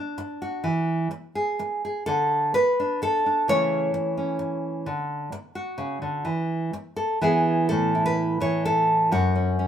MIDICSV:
0, 0, Header, 1, 3, 480
1, 0, Start_track
1, 0, Key_signature, 3, "major"
1, 0, Tempo, 473186
1, 660, Time_signature, 3, 2, 24, 8
1, 3071, Tempo, 460123
1, 6431, Tempo, 475059
1, 9892, End_track
2, 0, Start_track
2, 0, Title_t, "Nylon-string guitar"
2, 0, Program_c, 0, 24
2, 0, Note_on_c, 0, 62, 58
2, 424, Note_on_c, 0, 66, 57
2, 635, Note_off_c, 0, 62, 0
2, 646, Note_on_c, 0, 52, 73
2, 660, Note_off_c, 0, 66, 0
2, 1114, Note_off_c, 0, 52, 0
2, 1374, Note_on_c, 0, 68, 63
2, 1861, Note_off_c, 0, 68, 0
2, 1874, Note_on_c, 0, 68, 54
2, 2082, Note_off_c, 0, 68, 0
2, 2091, Note_on_c, 0, 69, 86
2, 2105, Note_on_c, 0, 50, 70
2, 2574, Note_off_c, 0, 69, 0
2, 2578, Note_on_c, 0, 71, 96
2, 2579, Note_off_c, 0, 50, 0
2, 2837, Note_on_c, 0, 62, 49
2, 3064, Note_off_c, 0, 71, 0
2, 3070, Note_on_c, 0, 69, 88
2, 3304, Note_off_c, 0, 62, 0
2, 3316, Note_on_c, 0, 62, 41
2, 3526, Note_off_c, 0, 62, 0
2, 3544, Note_on_c, 0, 49, 73
2, 3550, Note_off_c, 0, 69, 0
2, 3553, Note_on_c, 0, 52, 51
2, 3556, Note_on_c, 0, 73, 109
2, 3560, Note_on_c, 0, 57, 52
2, 3571, Note_on_c, 0, 61, 54
2, 4010, Note_off_c, 0, 49, 0
2, 4255, Note_off_c, 0, 61, 0
2, 4268, Note_on_c, 0, 61, 47
2, 4978, Note_off_c, 0, 73, 0
2, 4979, Note_off_c, 0, 52, 0
2, 4980, Note_off_c, 0, 61, 0
2, 4986, Note_on_c, 0, 50, 73
2, 5456, Note_off_c, 0, 50, 0
2, 5706, Note_on_c, 0, 66, 59
2, 5939, Note_on_c, 0, 49, 73
2, 6184, Note_off_c, 0, 49, 0
2, 6191, Note_on_c, 0, 50, 63
2, 6404, Note_off_c, 0, 66, 0
2, 6430, Note_on_c, 0, 52, 79
2, 6433, Note_off_c, 0, 50, 0
2, 6434, Note_off_c, 0, 57, 0
2, 6910, Note_off_c, 0, 52, 0
2, 7155, Note_on_c, 0, 69, 69
2, 7370, Note_off_c, 0, 69, 0
2, 7408, Note_on_c, 0, 52, 76
2, 7415, Note_on_c, 0, 59, 60
2, 7421, Note_on_c, 0, 64, 60
2, 7430, Note_on_c, 0, 68, 63
2, 7866, Note_off_c, 0, 59, 0
2, 7869, Note_off_c, 0, 64, 0
2, 7873, Note_off_c, 0, 68, 0
2, 7886, Note_on_c, 0, 69, 98
2, 7902, Note_on_c, 0, 45, 65
2, 8149, Note_on_c, 0, 64, 44
2, 8247, Note_off_c, 0, 69, 0
2, 8258, Note_on_c, 0, 71, 89
2, 8597, Note_off_c, 0, 52, 0
2, 8609, Note_on_c, 0, 52, 65
2, 8611, Note_off_c, 0, 71, 0
2, 8620, Note_on_c, 0, 73, 97
2, 8852, Note_off_c, 0, 73, 0
2, 8863, Note_on_c, 0, 69, 94
2, 9302, Note_off_c, 0, 45, 0
2, 9305, Note_off_c, 0, 64, 0
2, 9325, Note_off_c, 0, 52, 0
2, 9328, Note_on_c, 0, 42, 70
2, 9331, Note_off_c, 0, 69, 0
2, 9336, Note_on_c, 0, 66, 88
2, 9570, Note_on_c, 0, 61, 46
2, 9796, Note_off_c, 0, 61, 0
2, 9808, Note_on_c, 0, 61, 49
2, 9892, Note_off_c, 0, 42, 0
2, 9892, Note_off_c, 0, 61, 0
2, 9892, Note_off_c, 0, 66, 0
2, 9892, End_track
3, 0, Start_track
3, 0, Title_t, "Muted nylon-string guitar strokes"
3, 180, Note_on_c, 9, 29, 68
3, 282, Note_off_c, 9, 29, 0
3, 1124, Note_on_c, 9, 29, 65
3, 1225, Note_off_c, 9, 29, 0
3, 1616, Note_on_c, 9, 29, 63
3, 1717, Note_off_c, 9, 29, 0
3, 2593, Note_on_c, 9, 29, 65
3, 2694, Note_off_c, 9, 29, 0
3, 3062, Note_on_c, 9, 29, 69
3, 3166, Note_off_c, 9, 29, 0
3, 4022, Note_on_c, 9, 29, 73
3, 4127, Note_off_c, 9, 29, 0
3, 4494, Note_on_c, 9, 29, 70
3, 4598, Note_off_c, 9, 29, 0
3, 5465, Note_on_c, 9, 29, 70
3, 5569, Note_off_c, 9, 29, 0
3, 6922, Note_on_c, 9, 29, 68
3, 7023, Note_off_c, 9, 29, 0
3, 9892, End_track
0, 0, End_of_file